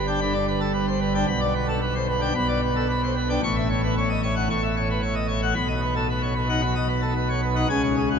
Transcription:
pipe organ
Already playing: G1 G2
0.07 D4 G5
0.21 D3 B5
0.34 D5
0.48 B4
0.61 A4
0.73 B4
0.88 C5
1.00 B4
1.15 D4 G5
1.27 B1 B2 B5
1.41 D5
1.55 B4
1.69 A4
1.82 B4
1.95 C5
2.08 B4
2.21 D4 G5
2.34 B1 B2 B5
2.49 D5
2.62 B4
2.76 A4
2.89 B4
3.04 C5
3.17 B4
3.30 D4 G5
3.43 A1 A2 C#6
3.56 E5
3.70 C#5
3.84 B4
3.97 C#5
4.10 D#5
4.23 C#5
4.36 F#5
4.50 A1 A2 C#6
4.63 E5
4.77 C#5
4.90 B4
5.02 C#5
5.15 D#5
5.28 C#5
5.42 F#5
5.55 B1 B2 B5
5.68 D#5
5.82 B4
5.96 A4
6.09 B4
6.23 C#5
6.36 B4
6.49 D#4 F#5
6.62 F#3 B5
6.75 D#5
6.88 B4
7.02 A4
7.16 B4
7.29 C#5
7.43 B4
7.56 D#4 F#5
7.70 C#2 C#3 G#5
7.83 C#5
7.97 G#4
8.11 F#4

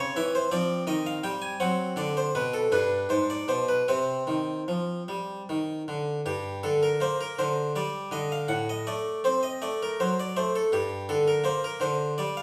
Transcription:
harpsichord
Already playing: C#3 C4
0.00 C#5
0.16 E3 E5
0.35 C5
0.51 F3 C4 D5
0.87 D#3 D#5
1.07 F5
1.24 G3 G5
1.42 G#5
1.60 F#3 C4 F#5
1.96 D3 D5
2.17 C5
2.35 B2 B4
2.53 A4
2.72 G2 D4 B4
3.09 G#2 C5
3.30 D5
3.48 B2 C5
3.69 B4
3.88 C3 C4 C5
4.27 D#3
4.68 F3
5.08 G3
5.49 D#3
5.88 D3
6.26 G2 G4
6.63 D3 A4
6.83 A#4
7.00 A#3 C5
7.21 A#4
7.39 D3 C5
7.76 G3 D5
8.11 D3 D#5
8.32 F5
8.48 A2 F#5
8.69 D#5
8.87 A3 D5
9.24 C4 C5
9.43 D#5
9.62 A3 D5
9.83 A#4
10.00 F#3 C5
10.20 D5
10.37 A3 C5
10.56 A4
10.72 G2 G4
11.09 D3 A4
11.28 A#4
11.44 A#3 C5
11.64 A#4
11.80 D3 C5
12.18 G3 D5
12.37 F5

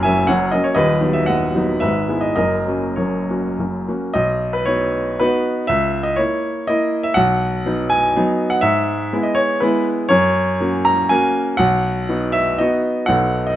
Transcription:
grand piano
Already playing: F#1 F#2 F#3 A#3 C#4 F#5 A#5
0.03 F#3 A#3 C#4 E5 G#5
0.27 F#1 F#2 C#5 F#5
0.51 F#3 A#3 C#4 D#5
0.64 C#5
0.75 D#1 D#2 B4 D#5
1.01 F#3 B3 D#4
1.13 E5
1.26 D#1 D#2 D#5 F#5
1.54 F#3 B3 D#4
1.80 G#1 G#2 B4 E5
2.09 G#3 B3 E4
2.21 D#5
2.36 F#1 F#2 A#4 D#5
2.67 A#3 C#4 F#4
2.96 F#1 F#2 A#4 C#5
3.29 A#3 C#4 F#4
3.59 F#1 F#2
3.88 A#3 C#4 F#4
4.14 B1 D#5
4.53 B4
4.66 B3 D#4 F#4 C#5
5.20 B3 D#4 F#4 B4
5.67 C#2 E5
6.03 D#5
6.16 A#3 E4 C#5
6.67 A#3 E4 D#5
7.03 E5
7.14 B1 F#5
7.66 F#3 B3 D#4
7.90 G#5
8.16 F#3 B3 D#4
8.50 F#5
8.61 G#2 E5
9.13 G#3 B3 E4
9.23 D#5
9.35 C#5
9.60 G#3 B3 E4 B4
10.09 F#2 C#5
10.60 A#3 C#4 F#4
10.85 A#5
11.09 A#3 C#4 F#4 G#5
11.57 B1 F#5
12.09 B3 D#4 F#4
12.32 E5
12.59 B3 D#4 F#4 D#5
13.06 B1 B3 D#4 A4 F#5
13.47 D#5

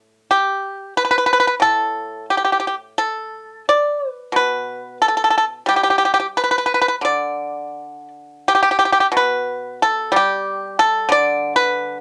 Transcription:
pipa
Already playing: A2
0.31 G4
0.97 B4
1.05 B4
1.11 B4
1.18 B4
1.26 B4
1.33 B4
1.40 B4
1.47 B4
1.60 A2 A4
2.30 G4
2.37 G4
2.45 G4
2.52 G4
2.60 G4
2.67 G4
2.98 A4
3.69 D5
4.11 B4
4.32 B2 B4
5.02 A4
5.08 A4
5.17 A4
5.24 A4
5.30 A4
5.38 A4
5.66 G3 G4
5.76 G4
5.83 G4
5.90 G4
5.98 G4
6.05 G4
6.14 G4
6.20 G4
6.37 B4
6.44 B4
6.51 B4
6.58 B4
6.66 B4
6.74 B4
6.82 B4
6.88 B4
7.01 D3 D5
8.48 G4
8.55 G4
8.63 G4
8.71 G4
8.79 G4
8.85 G4
8.93 G4
9.00 G4
9.12 B2
9.17 B4
9.82 A4
10.12 G3
10.16 G4
10.79 A4
11.09 D3 D5
11.56 B4

